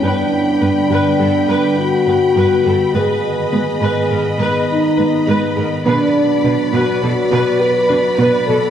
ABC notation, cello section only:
X:1
M:5/4
L:1/8
Q:1/4=103
K:Bm
V:1 name="Cello section" clef=bass
G,, z G,, G,, G,, G,, z G,, G,, G,, | ^G,, z G,, G,, G,, G,, z G,, G,, G,, | B,, z B,, B,, B,, B,, z B,, B,, B,, |]